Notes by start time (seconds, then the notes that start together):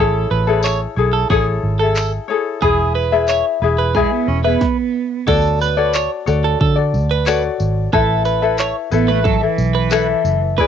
Already playing: A4 C#5
0.00 A1 E4 G#4 A4
0.31 A1 B4
0.47 E4 G#4 A4 C#5
0.62 C#5, clap, tambourine
0.96 B1 E4 G#4 A4 C#5
1.13 A4
1.30 A1 E4 G#4 A4 C#5, kick
1.63 G#1
1.79 E4 G#4 A4
1.96 clap, tambourine
2.28 E4 G#4 A4 C#5
2.62 E1 E4 G#4 B4 E5, kick
2.95 B4
3.12 E4 G#4 B4 E5
3.28 C#5, clap, tambourine
3.62 E1 E4 G#4 B4 E5
3.79 B4
3.94 G#3 E4 G#4 B4 E5, kick
4.11 B3
4.28 E1 C#4
4.44 B3 E4 G#4 B4 E5
4.61 kick, snare
5.27 D2 F#4 A4 C#5 D5, kick, crash
5.61 B4, tambourine
5.77 F#4 A4 C#5 D5
5.93 C#5, clap, tambourine
6.26 D2 F#4 A4 C#5 D5, tambourine
6.44 A4
6.61 D3 A4, kick
6.76 F#4 A4 D5
6.94 D2, tambourine
7.11 B4
7.26 F#4 A4 C#5 D5, clap, tambourine
7.60 G#1, tambourine
7.93 A1 E4 A4 B4 E5, kick
8.25 B4, tambourine
8.42 E4 A4 B4 E5
8.58 C#5, clap, tambourine
8.92 A1 B3 E4 A4 B4 E5, tambourine
9.09 A3 B4
9.24 F#3 A4, kick
9.41 E3 E4 A4 E5
9.58 B1, tambourine
9.75 B4
9.91 E4 A4 B4 E5, clap, tambourine
10.25 F#1, tambourine
10.58 E1 E4 G#4 B4 D5, kick